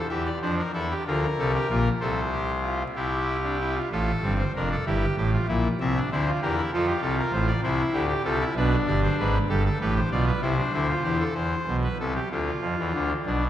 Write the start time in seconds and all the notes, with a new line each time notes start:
0.09 E2 E3 G4 E5
0.26 D5
0.42 F2 F3 D4 C5
0.59 A#4
0.73 E2 E3 E4 A4
0.91 G4
1.07 D2 D3 F4 A#4
1.38 C2 C3 A4
1.54 G4
1.70 A#1 A#2 F4
2.01 C2 C3 A4 C5
2.32 G4
2.63 F4
2.95 C2 C3 E4 G4
3.43 D4
3.60 E4
3.75 F4
3.92 A1 A2 F4 A4
4.23 G1 G2 C4
4.38 C5
4.55 F1 F2 D4 A#4
4.71 A4
4.86 G1 G2 E4 G4
5.17 A1 A2 G4
5.33 F4
5.48 A#1 A#2 E4
5.80 C2 C3 C4 E5
5.96 D4
6.11 D2 D3 E4 C5
6.26 F4
6.42 E2 E3 G4 A#4
6.57 E4
6.73 F2 F3 F4 A4
6.87 G4
7.02 C2 C3 A4
7.19 A#4
7.32 A1 A2 C5
7.47 D5
7.63 C2 C3 E4 C5
7.93 D2 D3 G4
8.09 G4
8.24 C2 C3 F4 A4
8.40 E4
8.56 B1 B2 D4 B4
8.87 G1 G2 D5
9.03 C5
9.19 G#1 G#2 B4
9.49 G1 G2 G4 A4
9.65 A4
9.81 A1 A2 G4 B4
9.96 C5
10.11 B1 B2 F4 D5
10.27 B4
10.42 C2 C3 E4 C5
10.58 D4
10.73 D2 D3 E4
10.89 F4
11.03 E2 E3 G4
11.20 A4
11.34 E2 E3 C5
11.68 B1 B2
11.83 B4
12.00 C2 C3 A4
12.15 G4
12.31 D2 D3 F4
12.62 F2 F3
12.79 E2 E3
12.94 D2 D3
13.26 B1 B2 D4